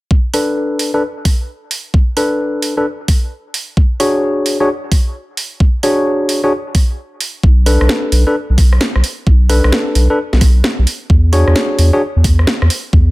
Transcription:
0.11 kick loud
0.34 0.91 D4 medium
0.34 0.91 A4 medium
0.34 0.91 B4 medium
0.34 open hi-hat loud
0.79 open hi-hat loud
0.94 1.02 D4 medium
0.94 1.02 A4 medium
0.94 1.02 B4 medium
1.25 kick loud
1.25 open hi-hat loud
1.71 open hi-hat loud
1.94 kick loud
2.17 2.74 D4 medium
2.17 2.74 A4 medium
2.17 2.74 B4 medium
2.17 open hi-hat medium
2.62 open hi-hat loud
2.77 2.85 D4 medium
2.77 2.85 A4 medium
2.77 2.85 B4 medium
3.08 kick loud
3.08 open hi-hat loud
3.54 open hi-hat loud
3.77 kick loud
4.00 4.57 D4 medium
4.00 4.57 F#4 medium
4.00 4.57 G#4 medium
4.00 4.57 C#5 medium
4.00 open hi-hat medium
4.46 open hi-hat loud
4.60 4.68 D4 medium
4.60 4.68 F#4 medium
4.60 4.68 G#4 medium
4.60 4.68 C#5 medium
4.92 kick loud
4.92 open hi-hat loud
5.37 open hi-hat loud
5.60 kick loud
5.83 6.40 D4 medium
5.83 6.40 F#4 medium
5.83 6.40 G#4 medium
5.83 6.40 C#5 medium
5.83 open hi-hat medium
6.29 open hi-hat loud
6.44 6.51 D4 medium
6.44 6.51 F#4 medium
6.44 6.51 G#4 medium
6.44 6.51 C#5 medium
6.75 kick loud
6.75 open hi-hat medium
7.21 open hi-hat loud
7.43 7.78 B1 loud
7.43 kick loud
7.66 8.23 D4 medium
7.66 8.23 A4 medium
7.66 8.23 B4 medium
7.66 open hi-hat medium
7.81 7.88 B1 medium
7.81 cross-stick medium
7.89 snare loud
8.12 8.25 B1 loud
8.12 open hi-hat loud
8.27 8.35 D4 medium
8.27 8.35 A4 medium
8.27 8.35 B4 medium
8.50 8.79 B1 medium
8.58 kick loud
8.58 open hi-hat medium
8.73 cross-stick medium
8.81 snare loud
8.96 9.03 B1 medium
8.96 cross-stick medium
9.04 open hi-hat loud
9.27 9.61 B1 medium
9.27 kick loud
9.50 10.07 D4 medium
9.50 10.07 A4 medium
9.50 10.07 B4 medium
9.50 open hi-hat loud
9.64 9.71 B1 medium
9.64 cross-stick medium
9.72 snare loud
9.95 10.08 B1 loud
9.95 open hi-hat loud
10.10 10.18 D4 medium
10.10 10.18 A4 medium
10.10 10.18 B4 medium
10.33 10.62 B1 medium
10.33 snare medium
10.41 kick loud
10.41 cross-stick soft
10.41 open hi-hat loud
10.64 snare loud
10.79 10.86 B1 medium
10.87 open hi-hat loud
11.10 11.44 E2 loud
11.10 kick loud
11.33 11.90 D4 medium
11.33 11.90 F#4 medium
11.33 11.90 G#4 medium
11.33 11.90 C#5 medium
11.33 open hi-hat loud
11.47 11.54 E2 medium
11.47 cross-stick medium
11.56 snare loud
11.79 11.91 E2 medium
11.79 open hi-hat loud
11.93 12.01 D4 medium
11.93 12.01 F#4 medium
11.93 12.01 G#4 medium
11.93 12.01 C#5 medium
12.16 12.45 E2 loud
12.24 kick loud
12.24 open hi-hat loud
12.39 cross-stick medium
12.47 snare loud
12.62 12.69 E2 medium
12.62 cross-stick medium
12.70 open hi-hat loud
12.93 13.11 E2 loud
12.93 kick loud

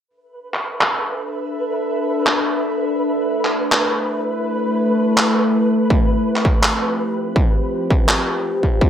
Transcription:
0.08 2.97 D4 medium
0.08 2.97 A4 medium
0.08 8.90 B4 medium
0.08 2.97 E5 medium
0.54 clap soft
0.81 clap loud
2.27 clap loud
2.99 5.87 A3 medium
2.99 5.87 E4 medium
2.99 5.87 B4 medium
3.45 clap soft
3.72 clap loud
5.17 clap loud
5.90 8.78 F3 medium
5.90 8.78 C4 medium
5.90 8.78 G4 medium
5.90 kick loud
6.36 clap soft
6.45 kick medium
6.63 clap loud
7.36 kick loud
7.90 kick medium
8.09 clap loud
8.63 kick medium
8.81 kick loud
8.81 riser medium

